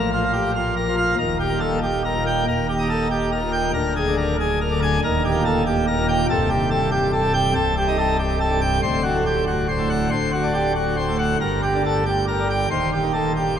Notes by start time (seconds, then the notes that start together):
Already playing: A#1 A#2
0.13 F4
0.23 F3
0.33 G4
0.56 F4
0.77 A#4
0.88 F3
0.98 F5
1.18 D#1 D#2 A#4
1.40 G4
1.50 A#2
1.60 A4
1.83 G4
2.05 A#4
2.15 A#2
2.27 G5
2.48 D#1 D#2 A#4
2.69 G4
2.79 D#4
2.89 A4
3.11 G4
3.32 A#4
3.42 A#2
3.52 G5
3.74 D1 D2 A#4
3.96 G#4
4.07 D3
4.18 A#4
4.40 G#4
4.61 A#4
4.71 D3
4.82 G#5
5.04 D#1 D#2 A#4
5.25 G4
5.34 A#2
5.45 A4
5.67 G4
5.88 A#4
5.99 A#2
6.09 G5
6.29 C1 C2 A4
6.50 G4
6.60 G2
6.71 A4
6.91 G4
7.13 A4
7.22 G2
7.34 G5
7.54 C1 C2 A4
7.77 G4
7.88 D#4
7.98 A4
8.19 G4
8.40 A4
8.50 G2
8.61 G5
8.82 D1 D2 C5
9.03 F#4
9.14 A2
9.26 G4
9.47 F#4
9.68 C5
9.78 A2
9.90 F#5
10.10 D1 D2 C5
10.32 F#4
10.43 D4
10.54 G4
10.76 F#4
10.96 C5
11.08 A2
11.19 F#5
11.41 G1 G2 A#4
11.63 G4
11.75 D3
11.86 A4
12.06 G4
12.28 A#4
12.40 D3
12.50 G5
12.71 D#1 D#2 C5
12.93 G4
13.03 D#3
13.13 A4
13.37 G4